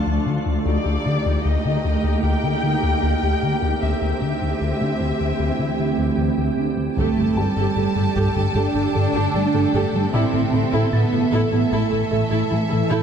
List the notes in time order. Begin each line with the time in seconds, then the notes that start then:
Already playing: D2 F3 A3 D4 F4 D5 A5
0.07 D2
0.26 D3
0.46 D2
0.66 D2 A#3 D#4 G4 D5 G5
0.86 D2
1.06 D3
1.26 D2
1.45 D2 D#5
1.65 D3
1.85 D2
2.04 D2
2.23 D2 G5
2.44 D3
2.63 D3
2.83 D2
3.03 D2
3.23 D2
3.43 D3
3.62 D2
3.82 D2 E3 C4 E5
4.02 D2
4.22 D3
4.42 D2
4.61 D2
4.81 D3
5.00 D2 E5
5.21 D2
5.39 D2
5.59 D3
5.79 D3
5.98 D2
6.18 D2
6.38 D2
6.57 D3
6.77 D2
6.97 G1 G2 D3 A3 G4 A4 G5 A5, taiko
7.16 G1 G2 G4 A4
7.36 G1 G2 G3 G4 A4 A5
7.57 G1 G2 G4 A4
7.76 G1 G2 G4 A4
7.96 G1 G2 G4 A4
8.16 G1 G2 G4 A4, taiko
8.35 G1 G2 G4 A4
8.55 G1 G2 D4 G4 A4
8.74 G1 G2 G4 A4
8.94 G1 G2 G4 A4
9.14 G1 G2 G4 A4
9.34 G1 G3 G4 A4
9.53 G1 G2 G4 A4
9.74 G1 G2 G4 A4
9.93 G1 G3 G4 A4
10.13 A1 A2 E3 C4 E4 A4 D5 E5 D6
10.33 A1 A2 E4 A4
10.53 A1 A2 E4 A4
10.72 A1 A2 E4 A4
10.92 A1 A2 B3 E4 A4 A6
11.12 A1 A2 E4 A4
11.31 A1 A2 E4 A4
11.52 A1 A2 B3 E4 A4
11.71 A1 A2 A3 E4 A4
11.90 A1 A2 E4 A4
12.11 A1 A2 E4 A4
12.30 A1 A2 E4 A4
12.49 A1 E3 A3 E4 A4
12.69 A1 A2 E4 A4
12.89 A1 A2 E4 A4 G6